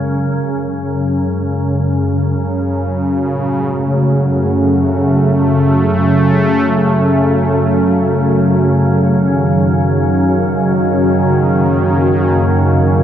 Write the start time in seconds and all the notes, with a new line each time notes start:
Already playing: F#2 C#3 G#3 G#4
0.26 F#2 C#3
1.21 F#3
2.08 F#4
3.35 A2
3.42 A3
4.46 C#3
9.11 D#3
11.48 A#3